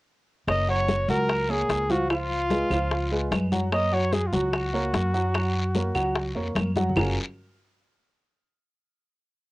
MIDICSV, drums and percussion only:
0, 0, Header, 1, 2, 480
1, 0, Start_track
1, 0, Key_signature, 6, "major"
1, 0, Tempo, 406229
1, 564, Time_signature, 4, 2, 24, 8
1, 11239, End_track
2, 0, Start_track
2, 0, Title_t, "Drums"
2, 565, Note_on_c, 9, 63, 34
2, 565, Note_on_c, 9, 74, 64
2, 571, Note_on_c, 9, 75, 70
2, 572, Note_on_c, 9, 60, 65
2, 683, Note_off_c, 9, 63, 0
2, 683, Note_off_c, 9, 74, 0
2, 689, Note_off_c, 9, 75, 0
2, 690, Note_off_c, 9, 60, 0
2, 804, Note_on_c, 9, 63, 31
2, 922, Note_off_c, 9, 63, 0
2, 1044, Note_on_c, 9, 73, 63
2, 1046, Note_on_c, 9, 63, 89
2, 1049, Note_on_c, 9, 60, 56
2, 1163, Note_off_c, 9, 73, 0
2, 1164, Note_off_c, 9, 63, 0
2, 1167, Note_off_c, 9, 60, 0
2, 1281, Note_on_c, 9, 63, 84
2, 1287, Note_on_c, 9, 73, 61
2, 1399, Note_off_c, 9, 63, 0
2, 1405, Note_off_c, 9, 73, 0
2, 1524, Note_on_c, 9, 74, 71
2, 1526, Note_on_c, 9, 63, 33
2, 1527, Note_on_c, 9, 75, 56
2, 1530, Note_on_c, 9, 60, 68
2, 1642, Note_off_c, 9, 74, 0
2, 1644, Note_off_c, 9, 63, 0
2, 1646, Note_off_c, 9, 75, 0
2, 1648, Note_off_c, 9, 60, 0
2, 1765, Note_on_c, 9, 63, 36
2, 1883, Note_off_c, 9, 63, 0
2, 2002, Note_on_c, 9, 73, 66
2, 2003, Note_on_c, 9, 63, 33
2, 2007, Note_on_c, 9, 60, 66
2, 2007, Note_on_c, 9, 61, 73
2, 2120, Note_off_c, 9, 73, 0
2, 2121, Note_off_c, 9, 63, 0
2, 2125, Note_off_c, 9, 60, 0
2, 2125, Note_off_c, 9, 61, 0
2, 2240, Note_on_c, 9, 63, 69
2, 2243, Note_on_c, 9, 73, 63
2, 2358, Note_off_c, 9, 63, 0
2, 2361, Note_off_c, 9, 73, 0
2, 2482, Note_on_c, 9, 74, 66
2, 2484, Note_on_c, 9, 60, 61
2, 2485, Note_on_c, 9, 75, 67
2, 2600, Note_off_c, 9, 74, 0
2, 2603, Note_off_c, 9, 60, 0
2, 2603, Note_off_c, 9, 75, 0
2, 2719, Note_on_c, 9, 63, 30
2, 2837, Note_off_c, 9, 63, 0
2, 2958, Note_on_c, 9, 63, 92
2, 2959, Note_on_c, 9, 73, 61
2, 2964, Note_on_c, 9, 60, 57
2, 3076, Note_off_c, 9, 63, 0
2, 3077, Note_off_c, 9, 73, 0
2, 3082, Note_off_c, 9, 60, 0
2, 3201, Note_on_c, 9, 63, 33
2, 3201, Note_on_c, 9, 75, 67
2, 3203, Note_on_c, 9, 73, 72
2, 3205, Note_on_c, 9, 60, 33
2, 3319, Note_off_c, 9, 63, 0
2, 3319, Note_off_c, 9, 75, 0
2, 3321, Note_off_c, 9, 73, 0
2, 3323, Note_off_c, 9, 60, 0
2, 3438, Note_on_c, 9, 63, 31
2, 3441, Note_on_c, 9, 60, 67
2, 3443, Note_on_c, 9, 74, 65
2, 3556, Note_off_c, 9, 63, 0
2, 3559, Note_off_c, 9, 60, 0
2, 3561, Note_off_c, 9, 74, 0
2, 3680, Note_on_c, 9, 63, 37
2, 3683, Note_on_c, 9, 60, 36
2, 3798, Note_off_c, 9, 63, 0
2, 3801, Note_off_c, 9, 60, 0
2, 3919, Note_on_c, 9, 73, 62
2, 3920, Note_on_c, 9, 63, 81
2, 3921, Note_on_c, 9, 60, 69
2, 3921, Note_on_c, 9, 61, 83
2, 3921, Note_on_c, 9, 75, 68
2, 4038, Note_off_c, 9, 63, 0
2, 4038, Note_off_c, 9, 73, 0
2, 4039, Note_off_c, 9, 60, 0
2, 4039, Note_off_c, 9, 61, 0
2, 4040, Note_off_c, 9, 75, 0
2, 4158, Note_on_c, 9, 73, 65
2, 4160, Note_on_c, 9, 63, 73
2, 4162, Note_on_c, 9, 60, 33
2, 4276, Note_off_c, 9, 73, 0
2, 4278, Note_off_c, 9, 63, 0
2, 4280, Note_off_c, 9, 60, 0
2, 4397, Note_on_c, 9, 63, 33
2, 4397, Note_on_c, 9, 74, 65
2, 4400, Note_on_c, 9, 60, 67
2, 4400, Note_on_c, 9, 75, 65
2, 4515, Note_off_c, 9, 63, 0
2, 4515, Note_off_c, 9, 74, 0
2, 4518, Note_off_c, 9, 60, 0
2, 4518, Note_off_c, 9, 75, 0
2, 4641, Note_on_c, 9, 63, 31
2, 4759, Note_off_c, 9, 63, 0
2, 4875, Note_on_c, 9, 73, 70
2, 4876, Note_on_c, 9, 63, 97
2, 4879, Note_on_c, 9, 60, 60
2, 4993, Note_off_c, 9, 73, 0
2, 4994, Note_off_c, 9, 63, 0
2, 4997, Note_off_c, 9, 60, 0
2, 5112, Note_on_c, 9, 73, 70
2, 5115, Note_on_c, 9, 63, 93
2, 5230, Note_off_c, 9, 73, 0
2, 5234, Note_off_c, 9, 63, 0
2, 5351, Note_on_c, 9, 63, 31
2, 5353, Note_on_c, 9, 74, 71
2, 5355, Note_on_c, 9, 75, 58
2, 5356, Note_on_c, 9, 60, 64
2, 5469, Note_off_c, 9, 63, 0
2, 5471, Note_off_c, 9, 74, 0
2, 5473, Note_off_c, 9, 75, 0
2, 5475, Note_off_c, 9, 60, 0
2, 5594, Note_on_c, 9, 63, 37
2, 5712, Note_off_c, 9, 63, 0
2, 5833, Note_on_c, 9, 63, 30
2, 5833, Note_on_c, 9, 73, 59
2, 5836, Note_on_c, 9, 60, 69
2, 5836, Note_on_c, 9, 61, 81
2, 5951, Note_off_c, 9, 63, 0
2, 5951, Note_off_c, 9, 73, 0
2, 5954, Note_off_c, 9, 60, 0
2, 5954, Note_off_c, 9, 61, 0
2, 6075, Note_on_c, 9, 73, 71
2, 6193, Note_off_c, 9, 73, 0
2, 6312, Note_on_c, 9, 74, 73
2, 6312, Note_on_c, 9, 75, 61
2, 6315, Note_on_c, 9, 63, 33
2, 6319, Note_on_c, 9, 60, 71
2, 6430, Note_off_c, 9, 74, 0
2, 6431, Note_off_c, 9, 75, 0
2, 6434, Note_off_c, 9, 63, 0
2, 6437, Note_off_c, 9, 60, 0
2, 6554, Note_on_c, 9, 63, 33
2, 6672, Note_off_c, 9, 63, 0
2, 6789, Note_on_c, 9, 73, 73
2, 6792, Note_on_c, 9, 63, 92
2, 6798, Note_on_c, 9, 60, 54
2, 6907, Note_off_c, 9, 73, 0
2, 6910, Note_off_c, 9, 63, 0
2, 6916, Note_off_c, 9, 60, 0
2, 7028, Note_on_c, 9, 73, 70
2, 7032, Note_on_c, 9, 75, 67
2, 7033, Note_on_c, 9, 60, 35
2, 7034, Note_on_c, 9, 63, 34
2, 7147, Note_off_c, 9, 73, 0
2, 7150, Note_off_c, 9, 75, 0
2, 7152, Note_off_c, 9, 60, 0
2, 7152, Note_off_c, 9, 63, 0
2, 7270, Note_on_c, 9, 74, 66
2, 7273, Note_on_c, 9, 60, 69
2, 7275, Note_on_c, 9, 63, 32
2, 7389, Note_off_c, 9, 74, 0
2, 7391, Note_off_c, 9, 60, 0
2, 7394, Note_off_c, 9, 63, 0
2, 7512, Note_on_c, 9, 63, 35
2, 7515, Note_on_c, 9, 60, 34
2, 7630, Note_off_c, 9, 63, 0
2, 7633, Note_off_c, 9, 60, 0
2, 7746, Note_on_c, 9, 73, 58
2, 7749, Note_on_c, 9, 63, 73
2, 7755, Note_on_c, 9, 60, 63
2, 7755, Note_on_c, 9, 61, 83
2, 7755, Note_on_c, 9, 75, 65
2, 7864, Note_off_c, 9, 73, 0
2, 7867, Note_off_c, 9, 63, 0
2, 7873, Note_off_c, 9, 60, 0
2, 7873, Note_off_c, 9, 61, 0
2, 7873, Note_off_c, 9, 75, 0
2, 7984, Note_on_c, 9, 73, 70
2, 7989, Note_on_c, 9, 63, 100
2, 8000, Note_on_c, 9, 60, 73
2, 8103, Note_off_c, 9, 73, 0
2, 8108, Note_off_c, 9, 63, 0
2, 8118, Note_off_c, 9, 60, 0
2, 8147, Note_on_c, 9, 64, 66
2, 8223, Note_on_c, 9, 74, 102
2, 8226, Note_off_c, 9, 64, 0
2, 8226, Note_on_c, 9, 64, 86
2, 8233, Note_on_c, 9, 75, 99
2, 8237, Note_on_c, 9, 61, 103
2, 8341, Note_off_c, 9, 74, 0
2, 8344, Note_off_c, 9, 64, 0
2, 8351, Note_off_c, 9, 75, 0
2, 8355, Note_off_c, 9, 61, 0
2, 11239, End_track
0, 0, End_of_file